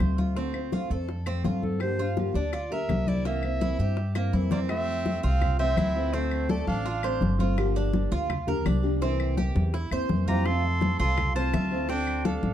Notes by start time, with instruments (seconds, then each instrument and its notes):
Already playing: cuban tres C5
0.00 upright bass D2, nylon-string guitar C3 A3 C4 F4, high bongo, low bongo, high conga, claves
0.18 cuban tres F4, high bongo, high conga
0.36 nylon-string guitar D3 A3 C4 F4, cuban tres C4, high bongo, high conga
0.54 nylon-string guitar A3 C4 F4, high conga, claves
0.72 nylon-string guitar D3 A3 C4 F4, cuban tres F4, high bongo, high conga
0.90 upright bass F2, nylon-string guitar A3 C4 F4, cuban tres A4, high bongo, high conga
1.09 muted nylon-string guitar stroke, high bongo, high conga
1.26 nylon-string guitar A3 C4 F4, cuban tres C4, high bongo, high conga, claves
1.44 upright bass G2, nylon-string guitar D3 A3 C4 F4, cuban tres F4, high bongo, low bongo, high conga
1.62 clarinet A4, high bongo, high conga
1.80 nylon-string guitar D3 F3 A#3 D4 G4, clarinet C5, high bongo, high conga, claves
1.98 nylon-string guitar A#3 D4 G4, cuban tres F4, high conga
2.17 nylon-string guitar D3 F3 A#3 D4 G4, high bongo, high conga
2.34 upright bass D2, nylon-string guitar A#3 D4 G4, cuban tres D4, clarinet D5, high bongo, high conga
2.53 cuban tres F4, muted nylon-string guitar stroke, high bongo, high conga, claves
2.70 nylon-string guitar A#3 D4 G4, cuban tres A#4, clarinet E5, high bongo, high conga
2.89 upright bass C2, nylon-string guitar D3 F3 A#3 D4 G4, high bongo, low bongo, high conga, claves
3.07 cuban tres E4, clarinet D5, high bongo, high conga
3.25 nylon-string guitar C3 E3 A#3 C4 E4, cuban tres A#3, clarinet E5, high bongo
3.43 nylon-string guitar A#3 C4 E4, high conga, claves
3.60 nylon-string guitar C3 E3 A#3 C4 E4, cuban tres E4, high bongo, high conga
3.79 upright bass G2, nylon-string guitar A#3 C4 E4, cuban tres G4, high bongo, high conga
3.97 muted nylon-string guitar stroke, high bongo, high conga
4.15 cuban tres A#3, nylon-string guitar A#3 C4 E4, high bongo, high conga, claves
4.33 upright bass F2, nylon-string guitar C3 E3 A#3 C4 E4, cuban tres E4, high conga
4.51 trumpet A#3, cuban tres C4, clarinet D5, low bongo, high conga
4.69 nylon-string guitar C3 A3 C4 F4, trumpet C4, clarinet E5, high bongo, high conga, claves
4.88 high conga
5.06 nylon-string guitar A3 C4 F4, high bongo, high conga
5.23 upright bass C2, trumpet C4, cuban tres F4, clarinet F5, high bongo, high conga
5.41 muted nylon-string guitar stroke, high bongo, high conga, low conga, claves
5.59 nylon-string guitar E3 A3 C4 F4, trumpet C4, cuban tres C5, clarinet E5, high bongo, high conga
5.77 upright bass D2, nylon-string guitar E3 A3 C4 F4, cuban tres E4, high bongo, low bongo, high conga, claves
5.95 nylon-string guitar E3 A3 C4 F4, high bongo
6.13 nylon-string guitar D3 A3 C4 F4, trumpet A3, cuban tres C4, clarinet C5, high bongo, high conga
6.31 high conga, claves
6.49 nylon-string guitar D3 A3 C4 F4, trumpet A3, cuban tres A4, clarinet D5, high bongo, high conga
6.67 upright bass A1, trumpet D4, clarinet F5, high bongo, high conga
6.85 cuban tres F4, muted nylon-string guitar stroke, high bongo, high conga
7.03 nylon-string guitar A3 C4 F4, cuban tres C5, high bongo, high conga, claves
7.21 upright bass G1, nylon-string guitar D3 A3 C4 F4, high bongo, low bongo, high conga
7.39 nylon-string guitar A3 C4 F4, cuban tres F4, high bongo, high conga
7.57 nylon-string guitar D3 F3 A#3 D4 G4, high bongo, claves
7.75 cuban tres D4, high conga
7.93 nylon-string guitar F3 A#3 D4 G4, high bongo, high conga
8.11 upright bass D2, cuban tres F4, high bongo, high conga
8.29 muted nylon-string guitar stroke, high bongo, high conga, low conga, claves
8.47 nylon-string guitar F3 A#3 D4 G4, cuban tres A#4, high bongo, high conga, low conga
8.65 upright bass C2, nylon-string guitar F3 A#3 D4 G4, cuban tres D4, high bongo, low bongo, high conga, claves
8.83 nylon-string guitar F3 A#3 D4 G4, high bongo, high conga
9.01 nylon-string guitar C3 E3 A#3 C4 E4, cuban tres C4, high bongo, high conga
9.19 high conga, claves
9.37 nylon-string guitar E3 A#3 C4 E4, cuban tres G4, high bongo, high conga
9.55 upright bass E2, high bongo, high conga
9.74 cuban tres E4, muted nylon-string guitar stroke, high bongo, high conga
9.91 upright bass E2, nylon-string guitar E3 A#3 C4 E4, cuban tres C5, high bongo, high conga, claves
10.09 upright bass F2, nylon-string guitar E3 A#3 C4 E4, high bongo, low bongo, high conga
10.27 nylon-string guitar E3 A#3 C4 E4, cuban tres F4, trumpet G4, clarinet A#5, high bongo, high conga
10.46 nylon-string guitar C3 A3 C4 F4, trumpet A4, clarinet C6, high bongo, claves
10.64 high conga
10.81 nylon-string guitar A3 C4 F4, high bongo, high conga
10.99 upright bass C2, cuban tres F4, trumpet A4, clarinet C6, high bongo, high conga
11.17 muted nylon-string guitar stroke, high bongo, high conga, low conga, claves
11.35 nylon-string guitar E3 A3 C4 F4, trumpet F4, cuban tres C5, clarinet A5, high bongo, high conga
11.53 upright bass D2, nylon-string guitar E3 A3 C4 F4, cuban tres E5, high bongo, low bongo, high conga, claves
11.71 nylon-string guitar E3 A3 C4 F4, high bongo, high conga
11.88 nylon-string guitar D3 A3 C4 F4, cuban tres C4, trumpet D4, clarinet G5, high bongo, high conga
12.07 high conga, claves
12.24 nylon-string guitar D3 A3 C4 F4, trumpet D4, cuban tres A4, clarinet F5, high bongo, high conga
12.43 upright bass A1, high bongo, high conga